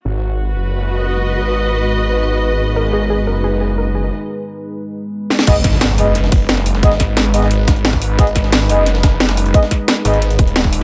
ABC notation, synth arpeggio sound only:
X:1
M:4/4
L:1/8
Q:1/4=177
K:G#m
V:1 name="Synth arpeggio sound"
z8 | z8 | A G G A G G A G | z8 |
z8 | z8 | z8 | z8 |]